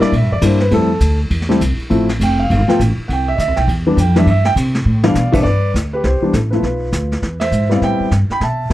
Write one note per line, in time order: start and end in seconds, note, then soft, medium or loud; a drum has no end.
0.00 0.11 G3 medium
0.00 0.11 A#3 medium
0.00 0.11 D4 medium
0.00 0.11 E4 medium
0.00 0.12 D5 loud
0.00 muted upright bass stroke soft
0.00 snare soft
0.12 0.21 A#2 medium
0.12 kick soft
0.12 ride medium
0.16 0.32 E5 medium
0.21 0.31 G2 medium
0.32 0.41 E2 medium
0.32 0.43 D5 medium
0.41 0.70 G2 loud
0.41 0.59 G3 medium
0.41 0.58 A#3 medium
0.41 0.58 D4 medium
0.41 0.59 E4 medium
0.41 0.62 C5 medium
0.41 kick soft
0.41 hi-hat pedal medium
0.41 ride medium
0.60 0.72 B4 medium
0.60 snare soft
0.71 1.00 F2 medium
0.71 0.88 G3 medium
0.71 0.88 A3 medium
0.71 0.88 C4 medium
0.71 0.88 E4 medium
0.71 1.18 A4 medium
0.71 kick soft
0.71 ride medium
1.00 1.30 D2 loud
1.00 kick soft
1.00 hi-hat pedal medium
1.00 ride medium
1.30 1.59 E2 loud
1.30 kick soft
1.30 ride medium
1.41 snare soft
1.49 1.59 G3 medium
1.49 1.59 A3 medium
1.49 1.59 C4 medium
1.49 1.60 E4 medium
1.49 snare soft
1.60 1.77 C2 loud
1.60 kick soft
1.60 hi-hat pedal medium
1.60 ride medium
1.78 muted upright bass stroke soft
1.78 ride soft
1.90 2.19 A1 medium
1.90 2.06 F3 medium
1.90 2.07 A3 medium
1.90 2.07 C4 medium
1.90 2.07 E4 medium
1.90 kick soft
1.90 ride medium
2.09 snare medium
2.09 ride medium
2.20 2.48 F1 loud
2.20 2.39 G5 medium
2.20 kick soft
2.20 hi-hat pedal medium
2.20 ride medium
2.39 2.50 F5 medium
2.50 2.67 G1 loud
2.50 2.69 F5 medium
2.50 kick soft
2.50 ride medium
2.68 2.78 F3 medium
2.68 2.78 A3 medium
2.68 2.78 B3 medium
2.68 2.78 F4 medium
2.68 2.79 G5 loud
2.68 snare soft
2.79 2.96 A1 loud
2.79 kick soft
2.79 hi-hat pedal medium
2.79 ride medium
2.97 muted upright bass stroke soft
3.08 3.37 C2 medium
3.08 3.10 F#5 medium
3.08 kick soft
3.08 ride medium
3.13 3.28 G5 medium
3.28 3.38 E5 loud
3.36 3.47 D2 medium
3.36 3.38 D#5 medium
3.36 kick soft
3.36 hi-hat pedal medium
3.36 ride medium
3.40 3.57 E5 medium
3.47 3.57 C2 medium
3.56 3.67 B1 medium
3.56 3.67 G5 medium
3.56 snare soft
3.56 ride medium
3.67 3.96 E2 medium
3.67 kick soft
3.67 ride medium
3.87 3.96 E3 medium
3.87 3.96 G3 medium
3.87 3.96 B3 medium
3.87 3.97 D4 medium
3.97 4.25 F2 loud
3.97 4.16 G5 medium
3.97 kick soft
3.97 hi-hat pedal medium
3.97 ride medium
4.16 4.25 E3 medium
4.16 4.26 G3 medium
4.16 4.25 B3 medium
4.16 4.26 D4 medium
4.16 4.27 E5 medium
4.16 snare medium
4.16 ride medium
4.26 4.55 G2 medium
4.26 4.46 E5 loud
4.26 kick soft
4.26 ride medium
4.45 4.52 G5 loud
4.45 snare medium
4.56 4.84 C3 loud
4.56 kick soft
4.56 hi-hat pedal medium
4.56 ride medium
4.75 snare soft
4.85 5.14 A2 medium
5.03 5.14 E3 medium
5.03 5.14 G3 medium
5.03 5.14 B3 medium
5.03 5.14 D4 medium
5.03 5.32 D5 medium
5.03 5.31 F5 loud
5.03 snare medium
5.15 5.44 B2 loud
5.15 snare medium
5.15 hi-hat pedal medium
5.32 5.43 C2 medium
5.32 5.43 E3 medium
5.32 5.43 G3 medium
5.32 5.43 B3 medium
5.32 5.43 D4 medium
5.32 5.39 C5 medium
5.32 5.37 E5 loud
5.32 kick medium
5.32 crash medium
5.43 5.73 G2 medium
5.43 5.72 B4 medium
5.43 5.71 D5 loud
5.43 brush sweep soft
5.43 kick soft
5.43 snare soft
5.74 6.03 D2 medium
5.74 kick soft
5.74 snare medium
5.74 hi-hat pedal medium
5.93 6.03 G4 medium
5.93 6.03 B4 medium
6.04 6.21 C2 medium
6.04 6.32 G4 medium
6.04 6.32 C5 medium
6.04 brush sweep soft
6.04 kick soft
6.04 snare soft
6.21 6.32 E3 medium
6.21 6.32 G3 medium
6.21 6.32 B3 medium
6.21 6.33 D4 medium
6.21 muted upright bass stroke soft
6.33 6.62 A1 medium
6.33 6.39 E4 medium
6.33 6.38 A4 medium
6.33 kick soft
6.33 snare medium
6.33 hi-hat pedal medium
6.51 6.62 F3 medium
6.51 6.62 A3 medium
6.51 6.62 B3 medium
6.51 6.62 E4 medium
6.51 7.18 F4 medium
6.51 7.36 B4 medium
6.51 snare soft
6.62 6.91 B1 medium
6.62 brush sweep soft
6.62 kick soft
6.62 snare soft
6.92 7.21 D2 medium
6.92 kick soft
6.92 snare medium
6.92 hi-hat pedal medium
7.12 snare soft
7.22 7.51 E2 medium
7.22 brush sweep soft
7.22 kick soft
7.22 snare soft
7.40 7.68 C5 medium
7.40 7.68 E5 loud
7.40 snare medium
7.40 ride medium
7.51 7.80 G#2 medium
7.51 hi-hat pedal medium
7.69 8.08 G3 medium
7.69 8.09 B3 medium
7.69 8.09 C4 medium
7.69 8.09 E4 medium
7.69 7.77 D5 medium
7.69 7.76 F5 medium
7.69 snare soft
7.81 7.98 A2 medium
7.81 8.10 E5 medium
7.81 8.10 G5 loud
7.81 brush sweep soft
7.81 kick soft
7.81 snare soft
8.00 muted upright bass stroke soft
8.11 8.28 G2 medium
8.11 kick soft
8.11 snare medium
8.11 hi-hat pedal medium
8.30 8.41 G5 medium
8.30 8.42 B5 loud
8.30 muted upright bass stroke soft
8.30 snare soft
8.40 8.69 B2 medium
8.40 8.69 E5 medium
8.40 8.69 A5 medium
8.40 brush sweep soft
8.40 kick soft
8.40 snare soft
8.70 8.73 A2 medium
8.70 8.73 G3 medium